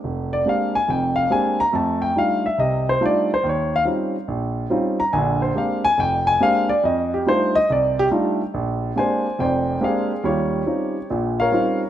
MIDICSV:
0, 0, Header, 1, 2, 480
1, 0, Start_track
1, 0, Tempo, 425532
1, 38, Time_signature, 4, 2, 24, 8
1, 13420, End_track
2, 0, Start_track
2, 0, Title_t, "Grand piano"
2, 0, Program_c, 0, 0
2, 46, Note_on_c, 0, 29, 66
2, 372, Note_on_c, 0, 74, 88
2, 457, Note_off_c, 0, 29, 0
2, 515, Note_on_c, 0, 56, 44
2, 519, Note_on_c, 0, 58, 43
2, 521, Note_on_c, 0, 60, 36
2, 521, Note_on_c, 0, 62, 45
2, 524, Note_off_c, 0, 74, 0
2, 525, Note_on_c, 0, 67, 52
2, 554, Note_on_c, 0, 77, 82
2, 838, Note_off_c, 0, 77, 0
2, 845, Note_off_c, 0, 56, 0
2, 846, Note_off_c, 0, 58, 0
2, 847, Note_off_c, 0, 60, 0
2, 848, Note_off_c, 0, 62, 0
2, 850, Note_off_c, 0, 67, 0
2, 850, Note_on_c, 0, 80, 92
2, 995, Note_on_c, 0, 29, 58
2, 996, Note_on_c, 0, 41, 61
2, 1003, Note_off_c, 0, 80, 0
2, 1017, Note_on_c, 0, 79, 83
2, 1305, Note_on_c, 0, 77, 93
2, 1309, Note_off_c, 0, 79, 0
2, 1411, Note_off_c, 0, 29, 0
2, 1411, Note_off_c, 0, 41, 0
2, 1470, Note_off_c, 0, 77, 0
2, 1471, Note_on_c, 0, 56, 51
2, 1472, Note_on_c, 0, 60, 52
2, 1473, Note_on_c, 0, 58, 47
2, 1477, Note_on_c, 0, 62, 49
2, 1479, Note_on_c, 0, 67, 58
2, 1489, Note_on_c, 0, 80, 91
2, 1785, Note_off_c, 0, 80, 0
2, 1802, Note_off_c, 0, 56, 0
2, 1802, Note_off_c, 0, 60, 0
2, 1803, Note_off_c, 0, 58, 0
2, 1805, Note_off_c, 0, 62, 0
2, 1806, Note_off_c, 0, 67, 0
2, 1806, Note_on_c, 0, 82, 98
2, 1950, Note_on_c, 0, 57, 65
2, 1955, Note_on_c, 0, 41, 68
2, 1961, Note_off_c, 0, 82, 0
2, 1976, Note_on_c, 0, 81, 68
2, 2268, Note_off_c, 0, 81, 0
2, 2276, Note_on_c, 0, 79, 85
2, 2367, Note_off_c, 0, 57, 0
2, 2370, Note_off_c, 0, 41, 0
2, 2434, Note_on_c, 0, 55, 45
2, 2435, Note_off_c, 0, 79, 0
2, 2436, Note_on_c, 0, 62, 41
2, 2437, Note_on_c, 0, 57, 40
2, 2439, Note_on_c, 0, 65, 48
2, 2440, Note_on_c, 0, 63, 41
2, 2464, Note_on_c, 0, 77, 91
2, 2752, Note_off_c, 0, 77, 0
2, 2763, Note_off_c, 0, 55, 0
2, 2764, Note_off_c, 0, 57, 0
2, 2764, Note_off_c, 0, 62, 0
2, 2765, Note_off_c, 0, 65, 0
2, 2766, Note_off_c, 0, 63, 0
2, 2773, Note_on_c, 0, 76, 87
2, 2912, Note_on_c, 0, 36, 57
2, 2914, Note_on_c, 0, 48, 62
2, 2923, Note_off_c, 0, 76, 0
2, 2928, Note_on_c, 0, 75, 81
2, 3223, Note_off_c, 0, 75, 0
2, 3264, Note_on_c, 0, 72, 89
2, 3327, Note_off_c, 0, 36, 0
2, 3329, Note_off_c, 0, 48, 0
2, 3394, Note_on_c, 0, 55, 48
2, 3395, Note_on_c, 0, 57, 46
2, 3395, Note_on_c, 0, 62, 49
2, 3399, Note_on_c, 0, 65, 62
2, 3402, Note_on_c, 0, 63, 50
2, 3408, Note_off_c, 0, 72, 0
2, 3446, Note_on_c, 0, 74, 92
2, 3721, Note_off_c, 0, 55, 0
2, 3722, Note_off_c, 0, 57, 0
2, 3722, Note_off_c, 0, 62, 0
2, 3722, Note_off_c, 0, 74, 0
2, 3724, Note_off_c, 0, 65, 0
2, 3726, Note_off_c, 0, 63, 0
2, 3765, Note_on_c, 0, 72, 84
2, 3875, Note_on_c, 0, 39, 71
2, 3899, Note_off_c, 0, 72, 0
2, 3939, Note_on_c, 0, 73, 75
2, 4209, Note_off_c, 0, 73, 0
2, 4238, Note_on_c, 0, 77, 96
2, 4288, Note_off_c, 0, 39, 0
2, 4323, Note_off_c, 0, 77, 0
2, 4346, Note_on_c, 0, 55, 47
2, 4347, Note_on_c, 0, 60, 41
2, 4351, Note_on_c, 0, 61, 40
2, 4351, Note_on_c, 0, 63, 42
2, 4355, Note_on_c, 0, 65, 46
2, 4677, Note_off_c, 0, 55, 0
2, 4677, Note_off_c, 0, 60, 0
2, 4679, Note_off_c, 0, 61, 0
2, 4679, Note_off_c, 0, 63, 0
2, 4681, Note_off_c, 0, 65, 0
2, 4828, Note_on_c, 0, 34, 59
2, 5244, Note_off_c, 0, 34, 0
2, 5304, Note_on_c, 0, 55, 51
2, 5305, Note_on_c, 0, 60, 49
2, 5307, Note_on_c, 0, 61, 48
2, 5314, Note_on_c, 0, 63, 54
2, 5314, Note_on_c, 0, 65, 63
2, 5635, Note_off_c, 0, 55, 0
2, 5635, Note_off_c, 0, 60, 0
2, 5636, Note_off_c, 0, 61, 0
2, 5636, Note_on_c, 0, 82, 92
2, 5640, Note_off_c, 0, 63, 0
2, 5640, Note_off_c, 0, 65, 0
2, 5786, Note_on_c, 0, 80, 78
2, 5787, Note_on_c, 0, 34, 75
2, 5791, Note_on_c, 0, 50, 74
2, 5792, Note_off_c, 0, 82, 0
2, 6089, Note_off_c, 0, 80, 0
2, 6115, Note_on_c, 0, 72, 68
2, 6202, Note_off_c, 0, 34, 0
2, 6204, Note_off_c, 0, 50, 0
2, 6262, Note_on_c, 0, 58, 41
2, 6264, Note_on_c, 0, 56, 46
2, 6267, Note_on_c, 0, 60, 42
2, 6271, Note_off_c, 0, 72, 0
2, 6271, Note_on_c, 0, 67, 53
2, 6273, Note_on_c, 0, 62, 47
2, 6293, Note_on_c, 0, 77, 81
2, 6583, Note_off_c, 0, 77, 0
2, 6593, Note_off_c, 0, 58, 0
2, 6594, Note_off_c, 0, 56, 0
2, 6594, Note_on_c, 0, 80, 114
2, 6596, Note_off_c, 0, 60, 0
2, 6598, Note_off_c, 0, 67, 0
2, 6599, Note_off_c, 0, 62, 0
2, 6743, Note_on_c, 0, 29, 67
2, 6746, Note_on_c, 0, 41, 59
2, 6750, Note_off_c, 0, 80, 0
2, 6768, Note_on_c, 0, 79, 94
2, 7060, Note_off_c, 0, 79, 0
2, 7072, Note_on_c, 0, 80, 110
2, 7159, Note_off_c, 0, 29, 0
2, 7161, Note_off_c, 0, 41, 0
2, 7225, Note_on_c, 0, 56, 56
2, 7226, Note_on_c, 0, 58, 55
2, 7228, Note_on_c, 0, 62, 52
2, 7229, Note_off_c, 0, 80, 0
2, 7229, Note_on_c, 0, 60, 49
2, 7233, Note_on_c, 0, 67, 65
2, 7251, Note_on_c, 0, 77, 104
2, 7541, Note_off_c, 0, 77, 0
2, 7551, Note_on_c, 0, 74, 92
2, 7554, Note_off_c, 0, 56, 0
2, 7554, Note_off_c, 0, 58, 0
2, 7555, Note_off_c, 0, 62, 0
2, 7556, Note_off_c, 0, 60, 0
2, 7558, Note_off_c, 0, 67, 0
2, 7708, Note_off_c, 0, 74, 0
2, 7712, Note_on_c, 0, 41, 70
2, 7731, Note_on_c, 0, 75, 81
2, 8021, Note_off_c, 0, 75, 0
2, 8053, Note_on_c, 0, 67, 78
2, 8124, Note_off_c, 0, 41, 0
2, 8194, Note_on_c, 0, 55, 47
2, 8194, Note_on_c, 0, 57, 49
2, 8198, Note_on_c, 0, 63, 44
2, 8199, Note_on_c, 0, 62, 43
2, 8200, Note_off_c, 0, 67, 0
2, 8202, Note_on_c, 0, 65, 58
2, 8218, Note_on_c, 0, 72, 94
2, 8505, Note_off_c, 0, 72, 0
2, 8519, Note_off_c, 0, 55, 0
2, 8519, Note_off_c, 0, 57, 0
2, 8520, Note_off_c, 0, 63, 0
2, 8521, Note_off_c, 0, 62, 0
2, 8521, Note_on_c, 0, 75, 108
2, 8522, Note_off_c, 0, 65, 0
2, 8673, Note_off_c, 0, 75, 0
2, 8685, Note_on_c, 0, 36, 61
2, 8711, Note_on_c, 0, 74, 82
2, 8991, Note_off_c, 0, 74, 0
2, 9017, Note_on_c, 0, 67, 109
2, 9092, Note_off_c, 0, 36, 0
2, 9106, Note_off_c, 0, 67, 0
2, 9151, Note_on_c, 0, 55, 55
2, 9152, Note_on_c, 0, 57, 52
2, 9153, Note_on_c, 0, 62, 52
2, 9156, Note_on_c, 0, 63, 51
2, 9158, Note_on_c, 0, 65, 62
2, 9477, Note_off_c, 0, 55, 0
2, 9478, Note_off_c, 0, 57, 0
2, 9479, Note_off_c, 0, 62, 0
2, 9480, Note_off_c, 0, 63, 0
2, 9481, Note_off_c, 0, 65, 0
2, 9632, Note_on_c, 0, 34, 71
2, 10046, Note_off_c, 0, 34, 0
2, 10107, Note_on_c, 0, 56, 42
2, 10107, Note_on_c, 0, 58, 45
2, 10112, Note_on_c, 0, 62, 45
2, 10116, Note_on_c, 0, 60, 41
2, 10117, Note_on_c, 0, 67, 47
2, 10125, Note_on_c, 0, 80, 86
2, 10132, Note_on_c, 0, 74, 60
2, 10140, Note_on_c, 0, 72, 64
2, 10436, Note_off_c, 0, 58, 0
2, 10437, Note_off_c, 0, 56, 0
2, 10439, Note_off_c, 0, 62, 0
2, 10441, Note_off_c, 0, 60, 0
2, 10442, Note_off_c, 0, 67, 0
2, 10592, Note_on_c, 0, 41, 64
2, 10594, Note_on_c, 0, 29, 60
2, 10606, Note_off_c, 0, 74, 0
2, 10606, Note_on_c, 0, 79, 85
2, 10608, Note_off_c, 0, 72, 0
2, 10612, Note_off_c, 0, 80, 0
2, 10623, Note_on_c, 0, 74, 56
2, 10625, Note_on_c, 0, 72, 57
2, 11007, Note_off_c, 0, 41, 0
2, 11008, Note_off_c, 0, 29, 0
2, 11064, Note_on_c, 0, 56, 57
2, 11065, Note_on_c, 0, 58, 49
2, 11068, Note_on_c, 0, 62, 47
2, 11069, Note_on_c, 0, 60, 51
2, 11076, Note_on_c, 0, 67, 57
2, 11093, Note_off_c, 0, 79, 0
2, 11100, Note_off_c, 0, 74, 0
2, 11102, Note_on_c, 0, 77, 81
2, 11110, Note_on_c, 0, 68, 63
2, 11117, Note_on_c, 0, 74, 54
2, 11397, Note_off_c, 0, 56, 0
2, 11397, Note_off_c, 0, 58, 0
2, 11399, Note_off_c, 0, 60, 0
2, 11399, Note_off_c, 0, 62, 0
2, 11403, Note_off_c, 0, 67, 0
2, 11525, Note_off_c, 0, 72, 0
2, 11540, Note_off_c, 0, 68, 0
2, 11543, Note_off_c, 0, 74, 0
2, 11548, Note_on_c, 0, 39, 66
2, 11552, Note_on_c, 0, 55, 68
2, 11566, Note_on_c, 0, 73, 70
2, 11582, Note_off_c, 0, 77, 0
2, 11583, Note_on_c, 0, 67, 51
2, 11587, Note_on_c, 0, 65, 47
2, 11966, Note_off_c, 0, 39, 0
2, 11969, Note_off_c, 0, 55, 0
2, 12020, Note_off_c, 0, 65, 0
2, 12027, Note_on_c, 0, 55, 43
2, 12031, Note_on_c, 0, 61, 43
2, 12033, Note_on_c, 0, 60, 41
2, 12036, Note_on_c, 0, 63, 43
2, 12037, Note_on_c, 0, 65, 48
2, 12361, Note_off_c, 0, 55, 0
2, 12362, Note_off_c, 0, 61, 0
2, 12363, Note_off_c, 0, 60, 0
2, 12365, Note_off_c, 0, 63, 0
2, 12365, Note_off_c, 0, 65, 0
2, 12478, Note_off_c, 0, 73, 0
2, 12487, Note_off_c, 0, 67, 0
2, 12523, Note_on_c, 0, 46, 63
2, 12524, Note_on_c, 0, 34, 65
2, 12856, Note_on_c, 0, 77, 92
2, 12873, Note_on_c, 0, 70, 64
2, 12875, Note_on_c, 0, 73, 67
2, 12937, Note_off_c, 0, 34, 0
2, 12937, Note_off_c, 0, 46, 0
2, 12993, Note_on_c, 0, 55, 53
2, 12996, Note_on_c, 0, 60, 53
2, 13000, Note_on_c, 0, 61, 48
2, 13002, Note_on_c, 0, 65, 63
2, 13006, Note_on_c, 0, 63, 50
2, 13292, Note_off_c, 0, 77, 0
2, 13326, Note_off_c, 0, 55, 0
2, 13328, Note_off_c, 0, 60, 0
2, 13329, Note_off_c, 0, 61, 0
2, 13330, Note_off_c, 0, 65, 0
2, 13333, Note_off_c, 0, 63, 0
2, 13420, Note_off_c, 0, 70, 0
2, 13420, Note_off_c, 0, 73, 0
2, 13420, End_track
0, 0, End_of_file